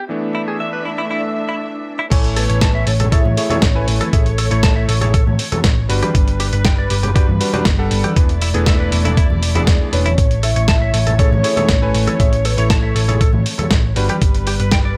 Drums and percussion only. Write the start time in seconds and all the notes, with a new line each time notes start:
2.12 kick, closed hi-hat, crash
2.24 closed hi-hat
2.36 open hi-hat
2.50 closed hi-hat
2.61 kick, snare, closed hi-hat
2.87 open hi-hat
3.00 closed hi-hat, low conga
3.12 kick, closed hi-hat
3.25 high conga
3.37 open hi-hat
3.50 closed hi-hat, high conga, low conga
3.62 kick, snare, closed hi-hat
3.88 open hi-hat
4.01 closed hi-hat, high conga
4.13 kick, closed hi-hat
4.26 closed hi-hat
4.38 open hi-hat
4.51 closed hi-hat
4.63 kick, snare, closed hi-hat
4.89 open hi-hat
5.01 closed hi-hat, low conga
5.14 kick, closed hi-hat
5.27 high conga
5.39 open hi-hat
5.52 closed hi-hat, high conga, low conga
5.64 kick, snare, closed hi-hat
5.90 open hi-hat
6.03 closed hi-hat, high conga
6.15 kick, closed hi-hat
6.28 closed hi-hat
6.40 open hi-hat
6.53 closed hi-hat
6.65 kick, snare, closed hi-hat
6.90 open hi-hat
7.03 closed hi-hat, low conga
7.16 kick, closed hi-hat
7.29 high conga
7.41 open hi-hat
7.53 closed hi-hat, high conga, low conga
7.65 kick, snare, closed hi-hat
7.91 open hi-hat
8.04 closed hi-hat, high conga
8.16 kick, closed hi-hat
8.29 closed hi-hat
8.42 open hi-hat
8.54 closed hi-hat
8.66 kick, snare, closed hi-hat
8.92 open hi-hat
9.05 closed hi-hat, low conga
9.17 kick, closed hi-hat
9.30 high conga
9.43 open hi-hat
9.55 closed hi-hat, high conga, low conga
9.67 kick, snare, closed hi-hat
9.93 open hi-hat
10.05 closed hi-hat, high conga
10.18 kick, closed hi-hat
10.31 closed hi-hat
10.43 open hi-hat
10.56 closed hi-hat
10.68 kick, snare, closed hi-hat
10.94 open hi-hat
11.07 closed hi-hat, low conga
11.19 kick, closed hi-hat
11.33 high conga
11.44 open hi-hat
11.57 closed hi-hat, high conga, low conga
11.69 kick, snare, closed hi-hat
11.95 open hi-hat
12.07 closed hi-hat, high conga
12.20 kick, closed hi-hat
12.33 closed hi-hat
12.45 open hi-hat
12.58 closed hi-hat
12.70 kick, snare, closed hi-hat
12.96 open hi-hat
13.08 closed hi-hat, low conga
13.21 kick, closed hi-hat
13.33 high conga
13.46 open hi-hat
13.59 closed hi-hat, high conga, low conga
13.71 kick, snare, closed hi-hat
13.96 open hi-hat
14.09 closed hi-hat, high conga
14.22 kick, closed hi-hat
14.35 closed hi-hat
14.47 open hi-hat
14.60 closed hi-hat
14.71 kick, snare, closed hi-hat